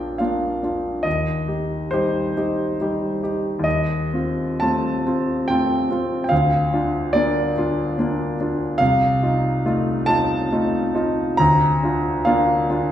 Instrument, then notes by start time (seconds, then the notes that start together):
grand piano
Already playing: A#1 A#3 D4 F4 D5 G5
0.18 A#3 D4 F4 F5
0.63 D4 F4
1.03 D#2 D#5
1.48 D#4 G4
1.91 G3 D#4 G4 C5
2.37 D#4 G4
2.81 G3 D#4 G4
3.23 D#4 G4
3.59 D#2
3.64 D#5
4.13 C4 F4
4.60 A3 C4 F4 A5
5.07 C4 F4
5.48 A3 C4 F4 G5
5.91 C4 F4
6.24 G5
6.29 D2 F5
6.73 D4 F4
7.13 A#3 D4 F4 D5
7.58 D4 F4
7.98 A#3 D4 F4
8.40 D4 F4
8.78 C2 F5
9.23 D#4 F4
9.66 A3 D#4 F4
10.06 D#4 F4 A5
10.52 A3 D#4 F4
10.95 D#4 F4
11.37 D2 A#5
11.83 D4 F4
12.25 A#3 D4 F4 F5
12.70 D4 F4